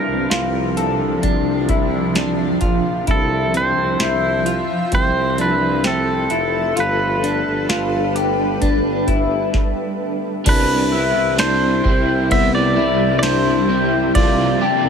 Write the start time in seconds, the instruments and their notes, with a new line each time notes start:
Already playing: ambient pad C3 F3 D4, clean electric guitar D4, pedal steel guitar A#4
0.07 tuba C2
0.30 tuba C2, clean electric guitar F4, snare, closed hi-hat
0.77 clean electric guitar A4, closed hi-hat
1.23 tuba C2, clean electric guitar D4, kick, closed hi-hat
1.69 clean electric guitar E4, kick, closed hi-hat
2.15 clean electric guitar D4, snare, closed hi-hat
2.61 tuba A#1, clean electric guitar F4, kick, closed hi-hat
3.07 tuba C2, ambient pad F3 E5, clean electric guitar E4, pedal steel guitar A4, kick, closed hi-hat
3.54 clean electric guitar C4, pedal steel guitar C5, closed hi-hat
3.76 tuba C2
4.00 tuba C2, clean electric guitar E4, snare, closed hi-hat
4.46 clean electric guitar F4, closed hi-hat
4.92 tuba C2, clean electric guitar C4, ambient pad A4, pedal steel guitar C5, kick, closed hi-hat
5.38 clean electric guitar D4, pedal steel guitar B4, closed hi-hat
5.84 clean electric guitar C4, pedal steel guitar A4, snare, closed hi-hat
6.30 tuba F1, clean electric guitar E4, closed hi-hat
6.76 tuba G1, ambient pad G3 D4 B4, clean electric guitar F4, closed hi-hat
6.80 pedal steel guitar B4
7.23 clean electric guitar D4, closed hi-hat
7.46 tuba G1
7.69 tuba G1, clean electric guitar F4, snare, closed hi-hat
8.15 clean electric guitar G4, closed hi-hat
8.62 tuba G1, clean electric guitar D4, kick, closed hi-hat
9.08 clean electric guitar E4, kick, closed hi-hat
9.54 kick, snare
10.45 tuba C2, overdriven electric guitar C3 G3 B3 E4, ambient pad C3 G3 E4, clean electric guitar D4, pedal steel guitar B4, kick, crash, ride
10.92 overdriven electric guitar B3 E4, clean electric guitar E4
10.97 overdriven electric guitar G3
11.16 tuba C2
11.37 overdriven electric guitar C3 G3, clean electric guitar D4, pedal steel guitar C5, snare, ride, tambourine
11.42 overdriven electric guitar E4
11.83 tuba C2, clean electric guitar C4, overdriven electric guitar E4, kick
11.89 overdriven electric guitar G3
12.30 overdriven electric guitar C3 G3 B3 E4, clean electric guitar B3, pedal steel guitar E5, kick, ride
12.55 pedal steel guitar D5
12.76 overdriven electric guitar B3 E4, clean electric guitar E4
12.82 overdriven electric guitar G3
13.19 overdriven electric guitar C3, clean electric guitar D4, pedal steel guitar C5 D5, ride
13.23 overdriven electric guitar G3 E4, snare, tambourine
13.69 clean electric guitar C4, overdriven electric guitar E4
13.74 overdriven electric guitar G3
14.15 tuba C2, overdriven electric guitar C3 F3 A#3 D4 A4, ambient pad F3 D4, clean electric guitar F4, pedal steel guitar D5, kick, ride
14.61 overdriven electric guitar D4 A4, clean electric guitar G4
14.66 overdriven electric guitar A#3
14.85 tuba C2